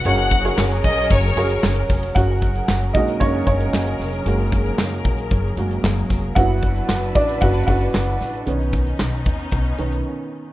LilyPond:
<<
  \new Staff \with { instrumentName = "Violin section" } { \time 4/4 \key fis \major \tempo 4 = 114 fis''4 r8 dis''8 cis''4 r4 | r1 | r1 | r1 |
r1 | }
  \new Staff \with { instrumentName = "Upright piano" } { \time 4/4 \key fis \major <fis' gis' ais' cis''>8 r16 <fis' gis' ais' cis''>4~ <fis' gis' ais' cis''>16 r8 <fis' gis' ais' cis''>4 r8 | <fis' fis''>4 r8 <dis' dis''>8 <cis' cis''>8 <cis' cis''>4 r8 | r1 | <fis' fis''>4 r8 <d' d''>8 <fis' fis''>8 <fis' fis''>4 r8 |
r1 | }
  \new Staff \with { instrumentName = "Upright piano" } { \time 4/4 \key fis \major cis4. r2 r8 | r4. <gis ais fis'>8 r2 | <gis ais fis'>8 r2 <gis ais fis'>8 r4 | <fis b e'>4. r2 r8 |
<dis b cis'>4. r4 <dis b cis'>8 r4 | }
  \new Staff \with { instrumentName = "String section" } { \time 4/4 \key fis \major << { <cis' gis' ais'>1 | <cis' gis' ais'>1~ | <cis' gis' ais'>1 | <d' e' b'>1 |
<b cis' dis'>1 | } \\ { fis1 | fis1~ | fis1~ | fis1 |
r1 | } >> }
  \new Staff \with { instrumentName = "Upright bass" } { \clef bass \time 4/4 \key fis \major fis,,4 fis,,8 ais,,8 fis,,8 fis,,8 fis,,8 eis,,8 | fis,,4 fis,,8 ais,,8 fis,,8 fis,,8 fis,,8 eis,,8 | fis,,4 fis,,8 ais,,8 fis,,8 fis,,8 fis,,8 eis,,8 | fis,,4 fis,,8 a,,8 fis,,8 fis,,8 fis,,8 a,,8 |
b,,4 b,,8 dis,8 b,,8 b,,8 r4 | }
  \new DrumStaff \with { instrumentName = "Drums" } \drummode { \time 4/4 <hhp cymr>16 cymr16 <bd cymr>16 cymr16 <hc cymr sn>16 cymr16 <bd cymr>16 cymr16 <bd cymr>16 cymr16 cymr16 cymr16 <hc cymr sn>16 cymr16 <hho bd cymr sn>16 cymr16 | <hh bd>8 <hh bd>16 hh16 <hc sn>16 hh16 <hh bd>16 hh16 <hh bd>16 hh16 <hh bd>16 hh16 <hc sn>16 hh16 <hho sn>16 hh16 | hh16 hh16 <hh bd>16 hh16 <hc sn>16 hh16 <hh bd>16 hh16 <hh bd>16 hh16 hh16 hh16 <hc sn>8 <hho bd sn>16 hh16 | <hh bd>8 <hh bd>16 hh16 <hc sn>8 <hh bd>16 hh16 <hh bd>16 hh16 <hh bd>16 hh16 <hc sn>16 hh16 <hho sn>16 hh16 |
hh16 hh16 <hh bd>16 hh16 <hc sn>16 hh16 <hh bd>16 hh16 <hh bd>16 hh16 hh16 hh16 r4 | }
>>